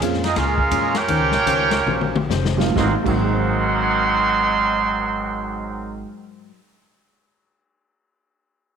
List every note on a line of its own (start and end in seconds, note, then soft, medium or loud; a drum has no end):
0.01 0.35 F2 medium
0.01 0.24 A#2 medium
0.01 0.20 G#3 medium
0.01 0.25 G#3 medium
0.01 0.20 A#3 medium
0.01 0.21 C4 medium
0.01 0.21 C#4 medium
0.01 0.25 C#4 medium
0.01 0.21 F4 medium
0.01 0.25 F4 medium
0.01 kick soft
0.01 hi-hat pedal medium
0.01 ride medium
0.14 snare soft
0.24 0.36 C4 medium
0.24 0.36 D#4 medium
0.24 0.36 F4 medium
0.24 0.36 G#4 medium
0.24 0.36 D#5 medium
0.24 snare medium
0.24 ride medium
0.36 0.70 C#2 loud
0.36 0.59 A#2 medium
0.36 0.94 G#3 medium
0.36 0.60 G#3 medium
0.36 0.94 C#4 medium
0.36 0.60 C#4 medium
0.36 0.94 F4 medium
0.36 0.60 F4 medium
0.36 0.95 G#4 medium
0.36 0.94 A#4 medium
0.36 0.94 F5 loud
0.36 kick soft
0.36 snare soft
0.36 ride medium
0.58 kick medium
0.71 1.07 E2 loud
0.71 0.95 A#2 medium
0.71 0.95 G#3 medium
0.71 0.96 C#4 medium
0.71 0.96 F4 medium
0.71 kick soft
0.71 hi-hat pedal medium
0.71 ride medium
0.95 2.31 A#3 loud
0.95 2.31 C#4 loud
0.95 2.31 F4 loud
0.95 2.31 G4 loud
0.95 2.31 A#4 loud
0.95 2.32 C#5 loud
0.95 2.31 G5 loud
0.95 snare medium
0.95 ride medium
1.08 1.20 D#2 loud
1.08 1.33 D#3 soft
1.08 1.34 C#4 medium
1.08 1.34 G4 soft
1.08 1.34 C5 medium
1.08 kick soft
1.08 ride medium
1.20 1.33 C#2 medium
1.32 1.46 A#1 medium
1.32 snare medium
1.46 1.86 C#2 medium
1.46 1.72 D#3 medium
1.46 1.73 C#4 medium
1.46 1.73 G4 medium
1.46 1.73 C5 medium
1.46 kick soft
1.46 hi-hat pedal medium
1.46 ride medium
1.71 snare medium
1.71 ride medium
1.86 2.28 A#1 medium
1.86 2.15 D#3 medium
1.86 2.15 C#4 medium
1.86 2.15 G4 medium
1.86 2.16 C5 medium
1.86 mid tom medium
2.01 mid tom medium
2.16 mid tom medium
2.29 2.74 F1 medium
2.29 2.60 D#3 medium
2.29 2.60 C#4 medium
2.29 2.60 G4 medium
2.29 2.60 C5 medium
2.29 snare medium
2.29 hi-hat pedal medium
2.45 snare medium
2.57 2.73 G#2 medium
2.57 2.74 F#3 medium
2.57 2.75 A#3 medium
2.57 2.76 C4 medium
2.57 3.21 D#4 medium
2.57 2.76 F4 medium
2.57 snare loud
2.70 3.00 G#2 medium
2.74 2.92 G#1 loud
2.74 2.93 G#2 medium
2.74 2.93 G#2 loud
2.74 2.93 D#3 medium
2.74 2.93 D#3 loud
2.74 2.92 F#3 medium
2.74 2.94 F#3 medium
2.74 2.94 A#3 medium
2.74 2.93 C4 medium
2.74 2.94 C4 medium
2.74 2.94 F4 medium
2.74 2.93 A#4 medium
2.74 2.93 D#5 medium
2.74 2.93 F#5 medium
2.74 2.93 C6 medium
2.74 kick medium
2.74 snare medium
2.79 3.04 F#3 medium
2.86 3.12 C4 medium
2.92 3.12 F4 medium
3.01 6.51 G#2 medium
3.01 6.04 G#2 medium
3.01 6.05 D#3 medium
3.01 6.05 F#3 medium
3.05 6.02 G#1 loud
3.05 6.02 G#2 loud
3.05 6.02 D#3 loud
3.05 6.02 F#3 loud
3.05 6.59 F#3 medium
3.05 6.05 A#3 medium
3.05 6.06 C4 medium
3.05 6.02 C4 loud
3.05 6.07 F#4 medium
3.05 6.03 A#4 loud
3.05 6.04 D#5 loud
3.05 6.04 F#5 loud
3.05 6.04 C6 loud
3.05 kick medium
3.05 crash medium
3.16 6.66 C4 medium
3.24 6.20 G#4 soft
3.32 6.28 C5 soft
3.40 6.36 F5 soft
3.49 6.46 G#5 soft
3.59 6.55 C6 soft
3.69 6.65 F6 soft
3.81 6.77 G#6 soft